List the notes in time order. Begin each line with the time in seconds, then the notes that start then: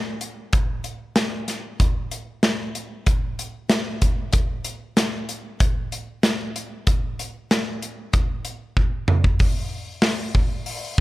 0.21 closed hi-hat
0.53 kick, closed hi-hat
0.84 closed hi-hat
1.16 snare, closed hi-hat
1.48 snare, closed hi-hat
1.80 kick, closed hi-hat
2.11 closed hi-hat
2.43 snare, closed hi-hat
2.75 closed hi-hat
3.06 kick, closed hi-hat
3.39 closed hi-hat
3.70 snare, closed hi-hat
4.02 kick, closed hi-hat
4.33 kick, closed hi-hat
4.65 closed hi-hat
4.97 snare, closed hi-hat
5.29 closed hi-hat
5.60 kick, closed hi-hat
5.92 closed hi-hat
6.23 snare, closed hi-hat
6.56 closed hi-hat
6.87 kick, closed hi-hat
7.19 closed hi-hat
7.51 snare, closed hi-hat
7.82 closed hi-hat
8.13 kick, closed hi-hat
8.45 closed hi-hat
8.77 kick
9.08 mid tom
9.24 kick
9.39 kick, open hi-hat
10.02 snare, open hi-hat
10.35 kick
10.66 open hi-hat